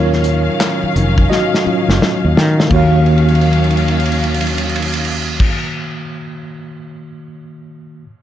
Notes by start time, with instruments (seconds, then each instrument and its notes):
Already playing: fretless electric bass D#2, string section D#3 F#3 C#4 F5, tine electric piano F#3 C#4 F4 A#4 C#5
0.13 snare
0.24 closed hi-hat
0.60 snare, clap, closed hi-hat
0.83 muted fretless electric bass stroke
0.96 fretless electric bass F1, closed hi-hat
1.18 kick
1.30 tine electric piano F#4 D#5, snare
1.54 snare
1.64 tine electric piano F#3 C#4 F4, muted fretless electric bass stroke
1.88 fretless electric bass F#1, snare
2.02 muted fretless electric bass stroke, snare
2.25 fretless electric bass D#2
2.37 fretless electric bass D#3, snare
2.60 snare
2.68 tine electric piano D#3 A#3, string section D#3 F#3 C#4 F5, kick, crash
2.72 fretless electric bass D#2, tine electric piano F#4 C#5 F5
3.06 crash
3.18 ride
3.28 crash
3.35 ride
3.41 crash
3.53 ride
3.64 crash
3.71 ride
3.77 crash
3.88 ride
4.00 crash
4.06 ride
4.12 crash
4.24 ride
4.34 crash
4.41 ride
4.47 crash
4.58 ride
4.69 crash
4.76 ride
4.82 crash
4.93 ride
5.05 crash
5.40 kick, crash